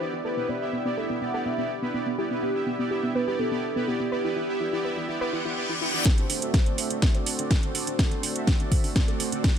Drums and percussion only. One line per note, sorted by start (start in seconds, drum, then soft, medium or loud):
6.06 kick loud
6.06 snare soft
6.06 closed hi-hat medium
6.18 closed hi-hat soft
6.30 open hi-hat loud
6.42 closed hi-hat medium
6.54 kick loud
6.54 snare soft
6.54 closed hi-hat soft
6.66 closed hi-hat soft
6.78 open hi-hat loud
6.90 closed hi-hat medium
7.02 kick loud
7.02 snare soft
7.02 closed hi-hat medium
7.15 closed hi-hat soft
7.26 open hi-hat loud
7.39 closed hi-hat medium
7.51 kick loud
7.51 snare soft
7.51 closed hi-hat soft
7.63 closed hi-hat soft
7.75 open hi-hat loud
7.87 closed hi-hat soft
7.99 kick loud
7.99 snare medium
7.99 closed hi-hat soft
8.11 closed hi-hat soft
8.23 open hi-hat loud
8.36 closed hi-hat medium
8.47 kick loud
8.47 snare soft
8.47 closed hi-hat soft
8.60 closed hi-hat soft
8.72 kick medium
8.72 open hi-hat loud
8.84 open hi-hat medium
8.96 kick loud
8.96 snare medium
8.96 closed hi-hat medium
9.08 closed hi-hat soft
9.20 open hi-hat loud
9.32 closed hi-hat medium
9.44 kick loud
9.44 snare medium
9.44 closed hi-hat medium